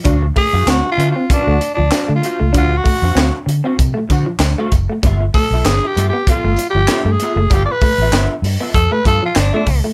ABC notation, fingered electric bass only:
X:1
M:4/4
L:1/16
Q:"Swing 16ths" 1/4=97
K:G
V:1 name="Fingered electric bass" clef=bass
D,,2 z F,, D,, z D, z2 D,, z D,, z D, z ^C,, | D,,2 z ^E,, D,, z D, z C, z D, z D,, z F,,, z | G,,,2 z B,,, G,,, z G,, z2 G,,, z G,,, z G,, z F,,, | G,,, z2 A,,, G,,, z G,, z =F,, z G,, z G,,, z ^C,, z |]